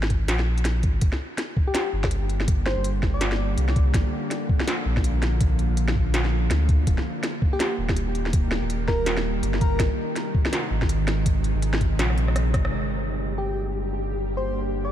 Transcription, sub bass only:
Already playing: G#1
0.29 A#1
0.83 G#1
1.02 G1
1.93 G1
2.77 G1
3.58 C2
3.95 A#1
4.86 A#1
5.70 A#1
6.51 D2
6.87 D#1
7.79 D#1
8.62 D#1
9.43 G1
9.80 G#1
10.71 G#1
11.55 G#1
11.99 A#1
12.54 G#1
12.72 G1

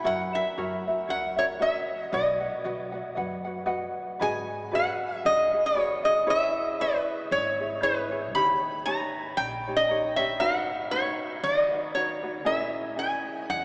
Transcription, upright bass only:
0.05 F#2
0.58 F#2
1.09 C#2
2.13 B1
2.65 B1
3.17 F#2
4.21 G#2
5.25 D#2
6.28 C#2
7.31 G#1
8.34 D#2
9.38 A#1
10.40 G#1
11.43 D#2
12.46 A#1
13.49 E2

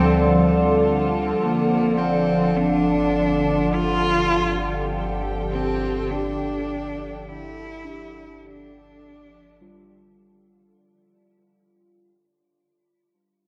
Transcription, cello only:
Already playing: C4
1.41 A#3
1.98 C4
2.56 D4
3.73 F4
5.50 C4
6.10 D4
7.28 E4
8.46 D4

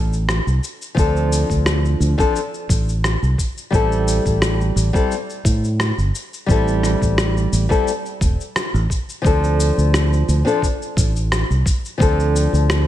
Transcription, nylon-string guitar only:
0.95 F3 C4 D4
0.99 A4
2.18 F3 C4 D4 A4
3.70 G3 C4 E4
3.75 A4
4.93 G3 C4 E4 A4
6.46 G3 C4 E4
6.51 A4
7.69 G3 C4 E4 A4
9.22 F3 C4 D4
9.27 A4
10.45 F3 C4 D4 A4
11.98 F3 C4 D4
12.02 A4

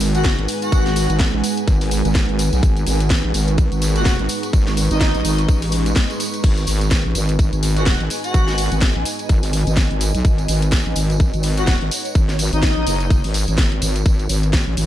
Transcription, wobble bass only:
Already playing: G#1
0.38 G#1
0.72 G#1
1.10 G#1
1.34 A1
1.68 G#1
2.05 G#1
2.29 G#1
2.53 B1
2.63 G#1
2.87 G#1
3.24 A1
3.34 G#1
3.72 G#1
4.20 G#1
4.53 G#1
4.91 G#1
5.15 A1
5.25 G#1
5.49 A1
6.44 G#1
6.67 G#1
7.05 A1
7.15 G#1
7.53 G#1
8.00 G#1
8.34 G#1
8.72 G#1
8.96 A1
9.29 G#1
9.67 G#1
9.91 G#1
10.15 B1
10.25 G#1
10.48 G#1
10.86 A1
10.96 G#1
11.34 G#1
11.81 G#1
12.15 G#1
12.53 G#1
12.77 A1
12.87 F#1
13.24 G#1
13.48 G#1
13.82 G#1
14.06 G#1
14.29 G#1
14.67 A1
14.77 G#1

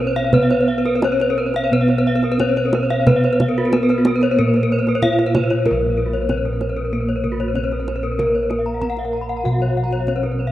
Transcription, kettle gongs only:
Already playing: B2
0.33 B4
1.03 B3
1.72 B2
2.40 B3
3.07 B4
3.73 B3
4.39 A#2
5.03 B3
5.66 A#4
5.71 A#1
6.30 B3
7.56 B3
8.19 A#4
8.83 B3
9.46 B2
10.08 B3

